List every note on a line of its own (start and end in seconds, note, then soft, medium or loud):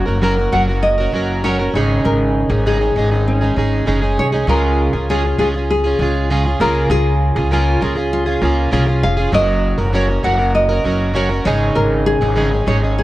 0.00 1.72 F#3 medium
0.00 1.70 A#3 medium
0.00 1.70 C#4 medium
0.00 1.72 F#4 medium
0.00 0.24 C#5 medium
0.06 0.50 F#1 loud
0.06 0.21 C#4 soft
0.06 0.22 F#4 soft
0.06 0.22 A#4 medium
0.22 0.37 F#3 medium
0.22 0.38 C#4 medium
0.22 0.37 F#4 medium
0.22 0.54 A#4 medium
0.22 0.35 A#4 medium
0.37 0.52 C#4 soft
0.37 0.53 F#4 soft
0.37 0.53 A#4 soft
0.52 1.10 F#1 loud
0.52 0.68 F#3 medium
0.52 0.68 C#4 medium
0.52 0.68 F#4 medium
0.52 0.66 A#4 medium
0.52 0.61 F#5 loud
0.68 1.00 C#4 soft
0.68 0.99 F#4 medium
0.68 0.97 A#4 medium
0.83 1.44 D#5 loud
0.98 1.12 C#4 soft
0.98 1.13 F#4 medium
0.98 1.14 A#4 medium
1.12 1.70 F#1 medium
1.12 1.43 F#3 medium
1.12 1.43 C#4 medium
1.12 1.44 F#4 medium
1.12 1.45 A#4 medium
1.44 1.59 F#3 medium
1.44 1.59 C#4 medium
1.44 1.60 F#4 medium
1.44 1.58 A#4 medium
1.44 1.74 C#5 loud
1.59 1.75 C#4 medium
1.59 1.75 F#4 soft
1.59 1.75 A#4 medium
1.74 2.02 G#1 loud
1.74 2.51 G#2 medium
1.74 2.51 C#3 medium
1.74 4.45 D#3 medium
1.74 4.45 G#3 medium
1.74 2.52 G#3 medium
1.74 4.45 C#4 medium
1.74 2.51 C#4 medium
1.74 2.49 D#4 medium
1.74 4.45 G#4 medium
1.74 2.49 G#4 medium
1.74 2.03 C#5 medium
2.05 2.47 G#1 loud
2.05 2.66 A#4 medium
2.49 2.92 G#1 loud
2.49 2.65 G#3 soft
2.49 2.66 C#4 soft
2.49 2.66 D#4 soft
2.49 2.65 G#4 medium
2.66 2.81 G#2 medium
2.66 2.81 C#3 medium
2.66 2.81 G#3 medium
2.66 2.80 C#4 medium
2.66 2.80 D#4 medium
2.66 3.23 G#4 medium
2.66 2.78 G#4 medium
2.80 2.95 G#3 soft
2.80 2.96 C#4 soft
2.80 2.96 D#4 soft
2.80 2.95 G#4 medium
2.96 3.53 G#1 loud
2.96 3.11 G#3 medium
2.96 3.12 C#4 medium
2.96 3.11 D#4 medium
2.96 3.10 G#4 medium
3.11 3.43 G#3 soft
3.11 3.42 C#4 soft
3.11 3.41 D#4 soft
3.11 3.40 G#4 soft
3.28 3.84 C#4 medium
3.41 3.55 G#3 soft
3.41 3.56 C#4 medium
3.41 3.57 D#4 medium
3.41 3.56 G#4 medium
3.56 3.85 G#1 medium
3.56 3.86 G#3 medium
3.56 3.86 C#4 medium
3.56 3.87 D#4 medium
3.56 3.87 G#4 medium
3.86 4.15 F#1 medium
3.86 4.02 G#2 medium
3.86 4.02 C#3 medium
3.86 4.02 G#3 medium
3.86 4.02 C#4 medium
3.86 4.02 D#4 medium
3.86 4.00 G#4 medium
4.02 4.34 G#3 medium
4.02 4.33 C#4 medium
4.02 4.32 D#4 medium
4.02 4.31 G#4 medium
4.18 4.45 C2 medium
4.18 4.27 C#5 loud
4.32 4.47 G#3 medium
4.32 4.47 C#4 medium
4.32 4.48 D#4 medium
4.32 4.48 G#4 medium
4.47 4.89 C#2 loud
4.47 4.93 C#3 medium
4.47 4.94 G#3 medium
4.47 4.94 C#4 medium
4.47 4.93 F4 medium
4.47 4.92 G#4 medium
4.47 5.09 A#4 medium
4.93 5.35 C#2 loud
4.93 5.09 C#4 soft
4.93 5.09 F4 soft
4.93 5.08 G#4 medium
5.09 5.24 C#3 medium
5.09 5.24 G#3 medium
5.09 5.25 C#4 medium
5.09 5.25 F4 medium
5.09 5.37 G#4 loud
5.09 5.24 G#4 medium
5.25 5.38 C#4 soft
5.25 5.39 F4 soft
5.25 5.39 G#4 soft
5.38 5.95 C#2 loud
5.38 5.54 G#3 medium
5.38 5.54 C#4 medium
5.38 5.55 F4 medium
5.38 5.47 G#4 medium
5.38 5.53 G#4 medium
5.54 5.86 C#4 soft
5.54 5.84 F4 soft
5.54 5.83 G#4 medium
5.71 6.60 G#4 loud
5.84 5.99 C#4 medium
5.84 6.00 F4 medium
5.84 5.99 G#4 medium
5.99 6.56 C#2 loud
5.99 6.29 G#3 medium
5.99 6.30 C#4 medium
5.99 6.30 F4 medium
5.99 6.31 G#4 medium
6.30 6.45 C#3 medium
6.30 6.45 G#3 loud
6.30 6.46 C#4 medium
6.30 6.45 F4 medium
6.30 6.44 G#4 medium
6.45 6.60 C#4 soft
6.45 6.60 F4 medium
6.45 6.60 G#4 medium
6.60 6.88 C#2 loud
6.60 7.36 C#3 medium
6.60 7.39 A#3 medium
6.60 7.38 C#4 medium
6.60 7.37 F4 medium
6.60 7.35 G#4 medium
6.60 6.90 A#4 loud
6.90 7.32 C#2 loud
6.90 7.53 G#4 loud
7.36 7.78 C#2 loud
7.36 7.51 C#4 soft
7.36 7.52 F4 soft
7.36 7.51 G#4 medium
7.51 7.81 C#3 medium
7.51 7.80 A#3 medium
7.51 7.81 C#4 medium
7.51 7.81 F4 medium
7.51 7.82 F4 medium
7.51 7.83 G#4 medium
7.81 8.38 C#2 medium
7.81 7.96 A#3 medium
7.81 7.97 C#4 medium
7.81 8.10 F4 loud
7.81 7.96 F4 medium
7.81 7.94 G#4 medium
7.95 8.27 C#4 soft
7.95 8.26 F4 soft
7.95 8.25 G#4 medium
8.13 8.69 F4 loud
8.26 8.41 C#4 soft
8.26 8.42 F4 medium
8.26 8.42 G#4 medium
8.42 8.70 C#2 loud
8.42 8.71 A#3 medium
8.42 8.72 C#4 medium
8.42 8.72 F4 medium
8.42 8.72 G#4 medium
8.71 9.00 C2 loud
8.71 8.87 C#3 medium
8.71 8.87 A#3 medium
8.71 8.88 C#4 medium
8.71 8.87 F4 medium
8.71 9.04 F4 medium
8.71 8.85 G#4 loud
8.86 9.19 C#4 soft
8.86 9.18 F4 medium
8.86 9.16 G#4 medium
9.03 9.31 F1 medium
9.03 9.34 F5 loud
9.17 9.32 C#4 medium
9.17 9.33 F4 medium
9.17 9.33 G#4 medium
9.32 9.75 F#1 loud
9.32 9.78 F#3 medium
9.32 9.79 C#4 medium
9.32 9.78 F#4 medium
9.32 9.77 A#4 medium
9.32 9.96 D#5 loud
9.78 10.20 F#1 loud
9.78 9.93 C#4 soft
9.78 9.93 F#4 medium
9.78 9.93 A#4 medium
9.93 10.09 F#3 medium
9.93 10.09 C#4 medium
9.93 10.09 F#4 medium
9.93 10.06 A#4 medium
9.93 10.26 C#5 loud
10.08 10.23 C#4 soft
10.08 10.24 F#4 soft
10.08 10.23 A#4 soft
10.23 10.81 F#1 loud
10.23 10.39 F#3 medium
10.23 10.39 C#4 medium
10.23 10.39 F#4 medium
10.23 10.37 A#4 medium
10.23 10.52 F#5 loud
10.39 10.71 C#4 soft
10.39 10.69 F#4 medium
10.39 10.68 A#4 medium
10.55 11.16 D#5 loud
10.69 10.84 C#4 medium
10.69 10.85 F#4 medium
10.69 10.84 A#4 medium
10.84 11.41 F#1 medium
10.84 11.13 F#3 medium
10.84 11.14 C#4 medium
10.84 11.14 F#4 medium
10.84 11.15 A#4 medium
11.14 11.30 F#3 medium
11.14 11.30 C#4 medium
11.14 11.30 F#4 medium
11.14 11.28 A#4 medium
11.14 11.44 C#5 loud
11.29 11.46 C#4 medium
11.29 11.46 F#4 medium
11.29 11.45 A#4 medium
11.45 11.73 G#1 loud
11.45 12.21 G#2 medium
11.45 12.22 C#3 medium
11.45 12.23 G#3 medium
11.45 12.22 C#4 medium
11.45 12.21 D#4 medium
11.45 12.21 G#4 medium
11.45 11.77 C#5 loud
11.75 12.18 G#1 loud
11.75 12.06 A#4 loud
12.06 12.69 G#4 loud
12.21 12.63 G#1 loud
12.21 12.35 G#3 soft
12.21 12.36 C#4 soft
12.21 12.36 D#4 medium
12.21 12.36 G#4 medium
12.35 12.51 G#2 medium
12.35 12.51 C#3 medium
12.35 12.52 G#3 medium
12.35 12.52 C#4 medium
12.35 12.52 D#4 medium
12.35 12.50 G#4 loud
12.52 12.65 G#3 soft
12.52 12.66 C#4 soft
12.52 12.67 D#4 soft
12.52 12.67 G#4 medium
12.66 13.03 G#1 loud
12.66 12.82 G#3 medium
12.66 12.82 C#4 medium
12.66 12.82 D#4 medium
12.66 12.81 G#4 medium
12.66 12.76 C#5 loud
12.82 13.03 G#3 soft
12.82 13.03 C#4 soft
12.82 13.03 D#4 medium
12.82 13.03 G#4 soft
12.99 13.03 G#4 loud